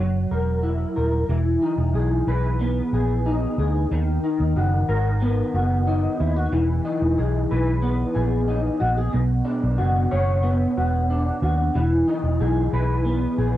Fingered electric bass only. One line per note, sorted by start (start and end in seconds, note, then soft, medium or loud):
0.00 0.24 F#1 medium
0.31 0.83 E1 medium
0.97 1.23 D#1 medium
1.29 1.55 E1 loud
1.78 1.91 E1 loud
1.94 2.20 B1 medium
2.27 2.80 B1 medium
2.93 3.45 A#1 medium
3.58 3.84 D2 loud
3.91 4.17 D#2 loud
4.40 4.53 D#2 medium
4.56 4.82 F#1 loud
4.89 5.41 G#1 medium
5.54 6.06 F#1 medium
6.20 6.46 D#2 loud
6.52 6.78 E1 loud
7.02 7.14 E1 loud
7.19 7.44 B1 medium
7.52 8.03 B1 loud
8.16 8.68 A#1 medium
8.81 9.07 A#1 medium
9.14 9.40 B1 loud
9.64 9.76 B1 medium
9.80 10.05 F#1 medium
10.13 10.64 F#1 loud
10.77 11.29 E1 medium
11.42 11.68 D#2 medium
11.75 12.01 E1 loud
12.23 12.37 E1 medium
12.40 12.67 B1 loud
12.73 13.25 B1 loud
13.38 13.57 A#1 medium